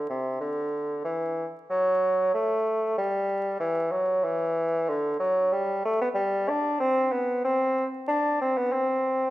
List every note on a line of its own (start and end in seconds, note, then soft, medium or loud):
0.09 0.40 C3 medium
0.41 1.03 D3 medium
1.05 1.46 E3 medium
1.70 2.30 F#3 medium
2.34 2.96 A3 medium
2.98 3.59 G3 medium
3.60 3.93 E3 medium
3.91 4.25 F#3 medium
4.24 4.91 E3 medium
4.89 5.19 D3 medium
5.19 5.54 F#3 medium
5.52 5.84 G3 medium
5.85 6.01 A3 loud
6.01 6.08 B3 medium
6.14 6.50 G3 medium
6.49 6.79 D4 loud
6.80 7.14 C4 loud
7.12 7.44 B3 medium
7.44 7.85 C4 loud
8.08 8.38 D4 loud
8.41 8.59 C4 loud
8.57 8.74 B3 loud
8.72 9.30 C4 loud